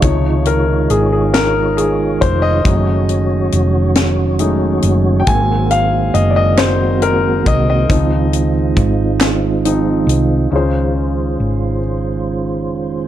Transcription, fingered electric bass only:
X:1
M:6/8
L:1/8
Q:3/8=46
K:Db
V:1 name="Fingered electric bass" clef=bass
D,,2 A,,,3 F,,, | G,,,2 F,,,3 G,,, | A,,,2 G,,,3 C,, | D,,2 A,,,3 C,, |
D,,2 A,,,3 F,,, |]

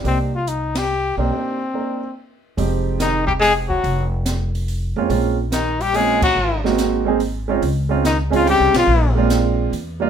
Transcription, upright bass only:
X:1
M:3/4
L:1/8
Q:"Swing" 1/4=143
K:Cm
V:1 name="Upright bass" clef=bass
C,,4- C,, =B,,, | z6 | [K:Fm] F,,,6 | F,,,4- F,,, F,, |
B,,,6 | A,,,6 | D,,4- (3D,, C,, =B,,, | B,,,4 =E,,2 |]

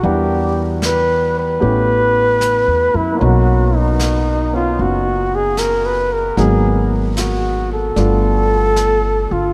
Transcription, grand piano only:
X:1
M:4/4
L:1/8
Q:"Swing" 1/4=76
K:Cblyd
V:1 name="Grand piano"
[=G,=B,=D=E_g]4 [=A,B,^CE=G]4 | [^F,^A,=B,^C^D]3 [B,C=f]4- [B,Cf] | [G,B,CEG]4 [=G,=A,=B,=DF]4 |]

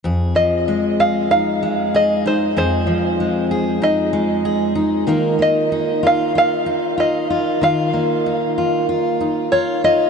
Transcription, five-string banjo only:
X:1
M:4/4
L:1/8
Q:1/4=95
K:Fm
V:1 name="Five-string banjo"
z e2 f f2 e c | c4 e3 z | z e2 f f2 e2 | f6 d e |]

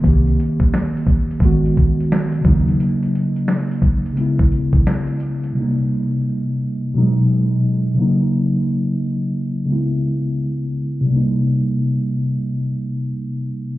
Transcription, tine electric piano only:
X:1
M:4/4
L:1/8
Q:"Swing 16ths" 1/4=87
K:Eblyd
V:1 name="Tine electric piano"
[E,B,CG]4 [E,_A,_C_G]3 [_D,_G,B,E]- | [_D,_G,B,E]4 [D,_A,_C_F]4 | [C,G,B,E]4 [_C,_G,_A,E]3 [_D,G,B,E]- | [_D,_G,B,E]4 [D,_A,_C_F]4 |
[C,G,B,E]8 |]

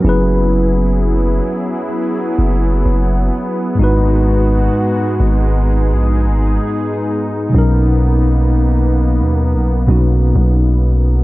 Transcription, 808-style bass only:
X:1
M:4/4
L:1/16
Q:"Swing 16ths" 1/4=64
K:G#m
V:1 name="808-style bass" clef=bass
F,,,6 z4 F,,,2 F,,,2 z2 | G,,,4 z2 G,,,3 A,,,3/2 G,,,3/2 z4 | B,,,6- B,,, D,,3/2 B,,,3/2 B,,,2 B,,,4 |]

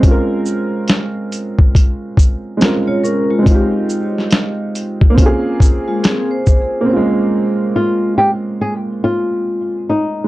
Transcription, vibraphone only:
X:1
M:4/4
L:1/16
Q:"Swing 16ths" 1/4=70
K:Bbdor
V:1 name="Vibraphone"
z12 z [Fd] [DB] [A,F]- | [A,F] z8 z2 [A,F] [CA] c3 | z16 |]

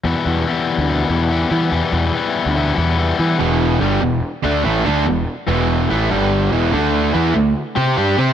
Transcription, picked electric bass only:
X:1
M:4/4
L:1/16
Q:1/4=144
K:Em
V:1 name="Picked electric bass" clef=bass
E,, z E,,2 z3 D,,3 E,,4 E,2 | E,, z E,,2 z3 D,,3 E,,4 E,2 | E,,,4 G,,,2 E,,,2 z2 D,,2 A,,,2 D,,2 | E,,,2 z2 E,,,4 A,,,2 G,,,4 E,,,2 |
D,,4 E,,2 D,,2 z2 C,2 G,,2 C,2 |]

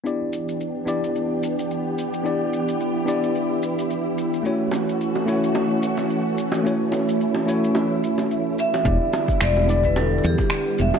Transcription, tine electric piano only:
X:1
M:4/4
L:1/8
Q:"Swing 16ths" 1/4=109
K:Edor
V:1 name="Tine electric piano"
[B,DEGd]3 [B,DEGd]4- [B,DEGd] | [B,DEGd]3 [B,DEGd]4- [B,DEGd] | [A,CEFc]3 [A,CEFc]4- [A,CEFc] | [A,CEFc]3 [A,CEFc]4- [A,CEFc] |
[B,DEGd]3 [B,DEGd]4- [B,DEGd] |]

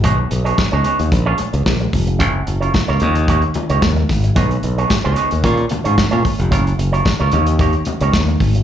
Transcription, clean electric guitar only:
X:1
M:4/4
L:1/16
Q:1/4=111
K:Ebdor
V:1 name="Clean electric guitar"
[=B,^D^G^c] z2 [B,DGc] z [B,DGc] [B,DGc] z2 [_DFAd] z6 | [DFBd] z2 [DFBd] z [DFBd] [B,E=Gd] z [B,EGd] z2 [B,EGd] z4 | [=B,^D^G^c] z2 [B,DGc] z [B,DGc] [B,DGc] z [_DFAd] z2 [DFAd] z [DFAd] z2 | [DFBd] z2 [DFBd] z [DFBd] [B,E=Gd] z [B,EGd] z2 [B,EGd] z4 |]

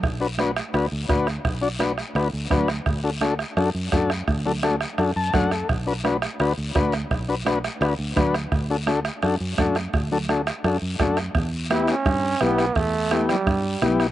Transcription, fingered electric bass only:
X:1
M:4/4
L:1/8
Q:1/4=170
K:Bm
V:1 name="Fingered electric bass" clef=bass
B,,,4 D,, D,, D,,2 | B,,,4 D,, D,, D,,2 | D,,4 F,, F,, F,,2 | D,,4 F,, F,, F,,2 |
B,,,4 D,, D,, D,,2 | B,,,4 D,, D,, D,,2 | D,,4 F,, F,, F,,2 | D,,4 F,, F,, F,,2 |
E,,4 G,,2 B,,,2 | E,,4 G,,2 B,,,2 |]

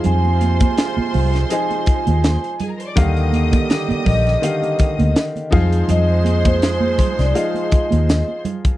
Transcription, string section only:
X:1
M:4/4
L:1/16
Q:"Swing 16ths" 1/4=82
K:Fdor
V:1 name="String section"
[cc']12- [cc']3/2 z/2 [Aa]/2 [Bb]/2 [cc']/2 [dd']/2 | [ee']12 z2 [cc']2- | [cc']12- [cc']2 z2 |]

